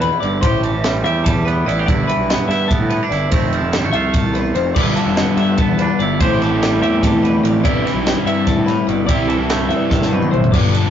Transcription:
Already playing: clean electric guitar D3 B3 E4
0.01 clean electric guitar F2 B4, ride
0.20 picked electric bass G1, clean electric guitar G2 D5, ride
0.41 picked electric bass A1, clean electric guitar A2 G4 C5, kick, ride
0.62 clean electric guitar E3 A4, ride
0.74 picked electric bass A1
0.84 clean electric guitar G3, snare, ride
1.04 picked electric bass E2, clean electric guitar G4 E5, ride
1.24 clean electric guitar G3 A4, kick, ride
1.35 picked electric bass E2
1.45 clean electric guitar B3 B4, ride
1.66 picked electric bass A1, clean electric guitar E4 D5, ride
1.79 clean electric guitar G4
1.86 picked electric bass G1, clean electric guitar G2 E4 D5, kick, ride
2.08 clean electric guitar E3 B4, ride
2.17 picked electric bass B1
2.30 clean electric guitar B3, snare, ride
2.48 picked electric bass G2, clean electric guitar E4 E5, snare, ride
2.68 clean electric guitar B3 A4, kick, ride
2.80 picked electric bass A2
2.90 clean electric guitar B3 B4, ride
3.03 clean electric guitar D4
3.10 picked electric bass G1, clean electric guitar E4 D5, snare, ride
3.30 picked electric bass F1, clean electric guitar F2 F3 A3 C4 C5, kick, ride
3.34 clean electric guitar E4
3.53 clean electric guitar F3 A4, ride
3.61 picked electric bass F1
3.73 clean electric guitar G3, snare, ride
3.84 clean electric guitar A3
3.93 picked electric bass C2, clean electric guitar F4 E5, ride
4.13 clean electric guitar A4, kick, ride
4.23 picked electric bass C2
4.34 clean electric guitar E2 B4, ride
4.55 picked electric bass F1, clean electric guitar F2 C5, ride
4.75 picked electric bass G1, clean electric guitar G2 E4 D5, overdriven electric guitar G3 D4 F4, kick, crash
4.79 overdriven electric guitar B4
4.96 clean electric guitar D3 A4, ride
5.06 picked electric bass F1
5.17 clean electric guitar B3, snare, ride
5.37 picked electric bass G2, clean electric guitar E5, ride
5.58 clean electric guitar A4, kick, ride
5.62 clean electric guitar B3
5.69 picked electric bass E2
5.78 clean electric guitar D4 B4, ride
5.99 picked electric bass G1, clean electric guitar E4 D5, ride
6.20 picked electric bass A1, clean electric guitar A2 G4 C5, overdriven electric guitar A3 C4 E4 A4, kick, ride
6.41 clean electric guitar E3 A4, snare, ride
6.51 picked electric bass A1
6.62 clean electric guitar G3, snare, ride
6.81 picked electric bass E2, clean electric guitar G4 E5, ride
7.03 clean electric guitar C3 A4, kick, snare, ride
7.12 picked electric bass E2
7.23 clean electric guitar B2 B4, ride
7.43 picked electric bass A1, clean electric guitar A2 D5, ride
7.64 picked electric bass G1, clean electric guitar G2 E4 D5, overdriven electric guitar G3 C4 E4 G4, kick, ride
7.85 clean electric guitar E3 B4, snare, ride
7.94 picked electric bass B1
8.06 snare, ride
8.25 picked electric bass G2, clean electric guitar E4 E5, ride
8.47 clean electric guitar G2 A4, kick, snare, ride
8.57 picked electric bass A2
8.66 clean electric guitar A2 B4, snare, ride
8.87 picked electric bass G1, clean electric guitar B2 D5, ride
9.07 picked electric bass C2, overdriven electric guitar C3 G3 C4, clean electric guitar C3 E4 D5, kick, ride
9.11 overdriven electric guitar E4 G4
9.27 clean electric guitar E3 A4, ride
9.39 picked electric bass C2
9.50 clean electric guitar A3, snare, ride
9.69 picked electric bass G2, clean electric guitar E5, ride
9.90 clean electric guitar C3 A4, kick, snare
10.00 picked electric bass G2, snare
10.11 clean electric guitar B2 B4, high tom
10.22 mid tom
10.31 picked electric bass A1, clean electric guitar A2 C5, mid tom
10.44 floor tom
10.52 picked electric bass G1, overdriven electric guitar G3 D4, clean electric guitar D5, kick, crash
10.56 overdriven electric guitar F4 B4
10.73 clean electric guitar A4, ride
10.84 picked electric bass F1

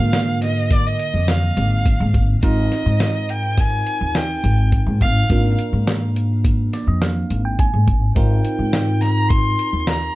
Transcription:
Already playing: tine electric piano D3 A#3 F4 A#4, violin F5
0.00 upright bass G#2
0.13 snare, closed hi-hat
0.42 violin D#5, snare, closed hi-hat
0.71 violin D5, kick, closed hi-hat
0.87 violin D#5
0.99 closed hi-hat
1.14 upright bass F2
1.28 violin F5, snare, closed hi-hat
1.57 upright bass G#1, closed hi-hat
1.86 kick, closed hi-hat
2.00 upright bass G#2
2.14 upright bass G#1, kick, closed hi-hat
2.43 upright bass G#1, tine electric piano C4 D#4 F4 A#4, violin D#5, kick, closed hi-hat
2.72 snare, closed hi-hat
2.86 upright bass G#2
3.00 snare, closed hi-hat
3.29 violin G5, closed hi-hat
3.58 violin G#5, kick, snare, closed hi-hat
3.87 closed hi-hat
4.01 upright bass D#2
4.15 violin G5, snare, closed hi-hat
4.44 upright bass G#1, closed hi-hat
4.72 kick, closed hi-hat
4.86 upright bass G#2
5.01 upright bass G#1, violin F5, kick, closed hi-hat
5.30 upright bass G#1, tine electric piano A#3 D4 F4 A#4, kick, closed hi-hat
5.59 closed hi-hat
5.73 upright bass G#2
5.87 snare, closed hi-hat
6.16 closed hi-hat
6.45 kick, closed hi-hat
6.73 tine electric piano D5, snare, closed hi-hat
6.87 upright bass F2, tine electric piano D#5
7.02 tine electric piano F5, snare, closed hi-hat
7.30 upright bass G#1, closed hi-hat
7.45 tine electric piano G5
7.59 tine electric piano G#5, kick, closed hi-hat
7.74 upright bass G#2
7.88 upright bass G#1, kick, closed hi-hat
8.15 upright bass G#1, tine electric piano C4 D#4 F4 A#4, violin G5, kick, closed hi-hat
8.45 closed hi-hat
8.59 upright bass G#2
8.73 snare, closed hi-hat
9.01 violin A#5, snare, closed hi-hat
9.29 violin C6, kick, closed hi-hat
9.59 closed hi-hat
9.73 upright bass D#2
9.80 violin C6
9.87 violin A#5, snare, closed hi-hat

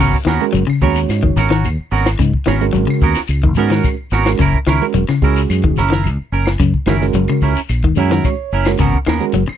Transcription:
0.00 fingered electric bass G#1, clean electric guitar C#3 B3 C#4 F#4 A#4
0.13 kick
0.25 fingered electric bass D#2, clean electric guitar D#3 B3 C#4 F#4 A#4, snare, closed hi-hat, claves
0.40 reed electric piano G#3 C#4 F#4 A#4, closed hi-hat, shekere
0.53 fingered electric bass F#1, clean electric guitar F#3, closed hi-hat, shekere
0.67 clean electric guitar C#3, claves
0.81 fingered electric bass D#2, reed electric piano G#3 C#4 F#4 C#5, clean electric guitar B3 C#4 F#4 A#4, kick, open hi-hat, shekere
0.95 shekere
1.09 fingered electric bass G#2, snare, closed hi-hat, claves, shekere
1.23 fingered electric bass F#1, clean electric guitar D#3, kick
1.36 fingered electric bass G#1, clean electric guitar B3 C#4 F#4 A#4, snare, closed hi-hat, shekere
1.50 clean electric guitar D#3 C#4 F#4 A#4, snare, shekere
1.64 fingered electric bass D#2, closed hi-hat, claves, shekere
1.79 muted fingered electric bass stroke
1.91 fingered electric bass G#1, clean electric guitar B3 C#4 F#4 A#4, open hi-hat, shekere
2.06 snare, closed hi-hat, claves, shekere
2.19 fingered electric bass G#2, clean electric guitar C#3, kick, closed hi-hat, shekere
2.33 kick
2.46 fingered electric bass G#1, clean electric guitar D#3 B3 C#4 F#4 A#4, reed electric piano G#3 C#4 F#4 C#5, snare, closed hi-hat, claves
2.60 reed electric piano G#3 C#4 F#4 A#4, shekere
2.73 fingered electric bass G#1, clean electric guitar F#3, closed hi-hat, shekere
2.87 clean electric guitar C#3, claves
3.01 fingered electric bass D#2, clean electric guitar B3 C#4 F#4 A#4, kick, open hi-hat, shekere
3.15 muted fingered electric bass stroke, snare, closed hi-hat, shekere
3.27 fingered electric bass C#2, closed hi-hat, claves, shekere
3.43 fingered electric bass F#1, clean electric guitar D#3, kick
3.55 fingered electric bass G#2, reed electric piano G#3 C#4 F#4 A#4, clean electric guitar B3 C#4 F#4 A#4, closed hi-hat, shekere
3.70 clean electric guitar D#3 C#4 F#4 A#4, snare, closed hi-hat, shekere
3.84 kick, closed hi-hat, claves, shekere
4.11 fingered electric bass G#1, clean electric guitar B3 C#4 F#4 A#4, snare, closed hi-hat, shekere
4.25 reed electric piano G#3 C#4 F#4 A#4, snare, claves, shekere
4.39 fingered electric bass F#1, clean electric guitar C#3 C#4 E4 A#4, kick, closed hi-hat, shekere
4.54 kick
4.67 fingered electric bass C#2, clean electric guitar D#3 C#4 E4 A#4, snare, closed hi-hat, claves
4.81 reed electric piano G#3 C#4 F#4 A#4, closed hi-hat, shekere
4.94 fingered electric bass E1, clean electric guitar F#3, closed hi-hat, shekere
5.09 clean electric guitar C#3, muted fingered electric bass stroke, snare, claves
5.22 fingered electric bass C#2, reed electric piano G#3 C#4 F#4 G#4, clean electric guitar C#4 E4 A#4, kick, open hi-hat, shekere
5.36 shekere
5.50 fingered electric bass F#2, closed hi-hat, claves, shekere
5.64 fingered electric bass E1, clean electric guitar D#3, kick
5.77 fingered electric bass F#1, clean electric guitar C#4 E4 A#4, snare, closed hi-hat, shekere
5.90 clean electric guitar D#3 E4 A#4, snare, shekere
6.04 fingered electric bass C#2, closed hi-hat, claves, shekere
6.19 muted fingered electric bass stroke
6.32 fingered electric bass F#1, clean electric guitar C#4 A#4, open hi-hat, shekere
6.46 snare, closed hi-hat, claves, shekere
6.60 fingered electric bass F#2, clean electric guitar C#3, kick, closed hi-hat, shekere
6.74 kick
6.86 fingered electric bass F#1, clean electric guitar D#3 C#4 E4 A#4, reed electric piano G#3 C#4 F#4 A#4, snare, closed hi-hat, claves
7.01 reed electric piano G#3 C#4 F#4 A#4, snare, shekere
7.14 fingered electric bass F#1, clean electric guitar F#3, closed hi-hat, shekere
7.28 clean electric guitar C#3, claves
7.41 fingered electric bass C#2, clean electric guitar C#4 E4 A#4, kick, open hi-hat, shekere
7.56 muted fingered electric bass stroke, closed hi-hat, shekere
7.69 fingered electric bass A#1, closed hi-hat, claves, shekere
7.84 fingered electric bass E1, clean electric guitar D#3, kick
7.96 fingered electric bass F#2, reed electric piano G#3 C#4 F#4 C#5 F#5, clean electric guitar C#4 E4 A#4, closed hi-hat, shekere
8.11 clean electric guitar D#3 E4 A#4, snare, closed hi-hat, shekere
8.24 reed electric piano C#5, kick, closed hi-hat, claves, shekere
8.52 fingered electric bass F#1, clean electric guitar C#4 E4 A#4, closed hi-hat, shekere
8.65 reed electric piano G#3 C#4 F#4 A#4, snare, claves, shekere
8.78 fingered electric bass G#1, clean electric guitar C#3 B3 C#4 F#4 A#4, kick, closed hi-hat, shekere
8.94 kick
9.07 fingered electric bass D#2, clean electric guitar D#3 B3 C#4 A#4, muted clean electric guitar stroke, snare, closed hi-hat, claves
9.20 reed electric piano G#3 C#4 F#4 A#4, closed hi-hat, shekere
9.33 fingered electric bass F#1, clean electric guitar F#3, closed hi-hat, shekere
9.48 muted clean electric guitar stroke, claves

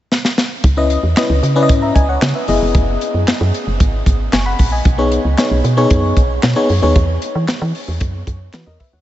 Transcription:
0.12 snare
0.25 snare
0.38 snare
0.64 fm bass C#2, kick, closed hi-hat
0.77 fm electric piano C#4 E4 B4 D#5
0.90 closed hi-hat
1.03 fm bass E2
1.16 fm electric piano C#4 E4 B4 D#5, snare, clap, closed hi-hat
1.30 fm bass C#2
1.43 fm bass C#3, closed hi-hat
1.56 fm electric piano C#4 E4 B4 D5
1.63 fm electric piano D#5
1.69 fm bass G#2, kick, closed hi-hat
1.82 fm electric piano E5 A#5
1.95 fm bass C#2, fm electric piano D#5 G#5, kick, closed hi-hat
2.09 fm electric piano C#5 F#5
2.22 fm bass C#3, snare, clap, closed hi-hat
2.35 fm electric piano B4 E5
2.48 fm bass F#1, fm electric piano B3 E4 G#4 D#5, open hi-hat
2.62 fm bass F1
2.75 fm bass F#1, kick, closed hi-hat
3.01 closed hi-hat
3.14 fm bass F#2
3.27 fm bass F#2, snare, clap, closed hi-hat
3.41 fm bass F#2
3.54 closed hi-hat
3.67 fm bass F#1
3.80 fm bass G#1, kick, closed hi-hat
4.06 fm bass G#1, kick, closed hi-hat
4.33 fm bass F#1, fm electric piano G#5 C#6, snare, clap, closed hi-hat
4.46 fm electric piano F#5 B5
4.59 fm bass A#1, kick, open hi-hat
4.72 fm electric piano D#5 G#5
4.85 fm bass B1, kick, closed hi-hat
4.98 fm electric piano B3 D#4 G#4 C#5
5.12 closed hi-hat
5.25 fm bass C#2
5.38 fm electric piano B3 D#4 G#4 C#5, snare, clap, closed hi-hat
5.51 fm bass B1
5.64 fm bass B2, closed hi-hat
5.77 fm electric piano B3 D#4 G#4 C#5
5.90 fm bass F#2, kick, closed hi-hat
6.17 fm bass B1, kick, closed hi-hat
6.43 fm bass B2, snare, clap, closed hi-hat
6.56 fm electric piano B3 D#4 G#4 C#5
6.69 fm bass F#2, open hi-hat
6.82 fm bass D#2, fm electric piano B3 D#4 G#4 C#5
6.96 fm bass E2, kick, closed hi-hat
7.22 closed hi-hat
7.35 fm bass E3
7.48 fm bass E3, snare, clap, closed hi-hat
7.62 fm bass E3
7.75 open hi-hat
7.88 fm bass E2
8.00 fm bass F#2, kick, closed hi-hat
8.27 fm bass F#2, kick, closed hi-hat
8.53 fm bass E3, fm electric piano F#4 B4, snare, clap, closed hi-hat
8.66 fm bass E2, fm electric piano A#4 D#5
8.80 fm electric piano B4 E5, kick, open hi-hat
8.93 fm bass D#2, fm electric piano C#5 F#5

